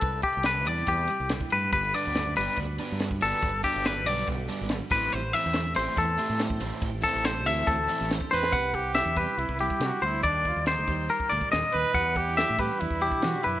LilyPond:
<<
  \new Staff \with { instrumentName = "Clean electric guitar" } { \time 4/4 \key c \lydian \tempo 4 = 141 a'8 g'8 b'8 d''8 g'4 r8 b'8 | b'8 d''4 b'8 r4. a'8~ | a'8 g'8 b'8 d''8 r4. b'8 | c''8 e''4 c''8 a'4 r4 |
r8 a'8 c''8 e''8 a'4 r8 c''8 | fis''4 e''8 b'4 g'4 c''8 | d''4 c''4 bes'8 d''8 ees''4 | fis''4 e''8 b'4 g'4 b'8 | }
  \new Staff \with { instrumentName = "Trumpet" } { \time 4/4 \key c \lydian r1 | r1 | r1 | r1 |
r2. r8 b'8~ | b'8 g'4 g'8 e'4 fis'8 e'8 | \tuplet 3/2 { d'8. f'8 f'16 } ees'4 r4. b'8~ | b'8 g'4 g'8 e'4 fis'8 e'8 | }
  \new Staff \with { instrumentName = "Clean electric guitar" } { \time 4/4 \key c \lydian << { b'8 e'16 g'16 e'4 g'8 e'4. | b'8 fis'8 d'4 fis'8 d'8 fis'8 b'8 | b'8 fis'8 d'4 fis'4. c''8 | g'8 c'4 g'8 c'8 g'8 c''8 c''8 |
g'8 c'4 g'8 c'8 e'16 g'16 c''8 c''8 | g'4 e'8 e'8 g8 g8 e'8 g8 | g'4 g'8 g'8 g'8 g'4. | g'4 d'8 c'16 d'16 d'8 d'8 c'16 d'16 d'8 | } \\ { <c g>4. g4 g8 b,8 a,8 | g,4. g4 d4. | g,4. g4. g,8 a,8~ | a,4 a4 e4. a,8~ |
a,4 a4 e4. a,8 | c4. g8 r8 g4. | ees4. g4 bes,8 d8 ees8 | e4. g4 b,4. | } >> }
  \new Staff \with { instrumentName = "Overdriven electric guitar" } { \time 4/4 \key c \lydian r1 | r8 <d g b d'>8 r8 <d g b d'>8 r8 <d g b d'>8 r8 <d g b d'>8 | r8 <d g b d'>8 r8 <d g b d'>8 r8 <d g b d'>8 r8 <e a c' e'>8 | r8 <e a c' e'>8 r8 <e a c' e'>8 r8 <e a c' e'>8 r8 <e a c' e'>8 |
r8 <e a c' e'>8 r8 <e a c' e'>8 r8 <e a c' e'>8 r8 <e a c' e'>8 | r1 | r1 | r1 | }
  \new Staff \with { instrumentName = "Fretless electric bass" } { \clef bass \time 4/4 \key c \lydian c,8 r16 c,8. e,8 e,8 r16 c,8 r16 g,8 | g,,8 r16 d,8. g,,16 r16 d,8 r16 g,8. g,,16 r16 | g,,8 r16 g,,8. b,,8 b,,8 r16 aes,,8 r16 a,,8 | a,,8 r16 e,8. a,,16 r16 e,8 r16 a,8. a,,16 r16 |
a,,8 r16 a,,8. d,8 d,8 r16 a,,8 r16 e,8 | c,4~ c,16 e,8 r16 c,16 c,8 r16 c16 r16 d,8 | ees,8. ees,8 d,16 ees,8 r8 d,16 r16 ees,16 r16 ees,16 r16 | e,4~ e,16 a,8 r16 e,16 e,8 r16 e16 r16 fis,8 | }
  \new DrumStaff \with { instrumentName = "Drums" } \drummode { \time 4/4 <bd cymr>8 <bd cymr>8 <cymr sn>8 cymr16 sn16 <bd cymr>8 cymr8 <cymr sn>16 bd16 cymr8 | <bd cymr>8 cymr8 <cymr sn>8 cymr8 <bd cymr>8 cymr8 <cymr sn>16 bd16 cymr8 | <bd cymr>8 <bd cymr>8 <cymr sn>8 cymr8 <bd cymr>8 <cymr sn>8 <cymr sn>8 <bd cymr>8 | cymr8 cymr8 <cymr sn>8 cymr8 <bd cymr>8 cymr8 <cymr sn>16 bd16 cymr8 |
<bd cymr>8 <bd cymr>8 <cymr sn>8 cymr8 <bd cymr>8 cymr8 <cymr sn>16 bd16 sn16 sn16 | <bd cymr>8 <bd cymr>8 <cymr sn>8 <bd cymr sn>8 cymr16 bd16 cymr16 bd16 <cymr sn>8 cymr8 | <bd cymr>8 <bd cymr>8 <cymr sn>16 sn16 <bd cymr>8 cymr16 bd16 cymr16 bd16 <cymr sn>8 cymr8 | <bd cymr>8 <bd cymr>16 sn16 <cymr sn>8 <bd cymr>8 cymr16 bd16 cymr16 bd16 <cymr sn>8 cymr8 | }
>>